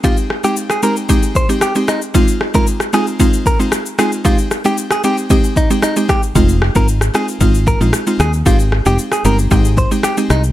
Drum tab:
SH |xx-xxxxxxxxxxxxx|xx-xxxxxxxxxxxxx|xxxxxxxxxxxxxxxx|xx-xxxxxxxxxxxxx|
SD |--r--r------r-r-|--r--rr-----r-r-|--r--r------r-r-|--r--rr-----r-r-|
BD |o-------o-o-----|o--o----o-o-----|o-------o-o---o-|o--o----o-o-----|

SH |xx-xxxxxxxxxxxxx|
SD |--r--r------r-r-|
BD |o-------o-o-----|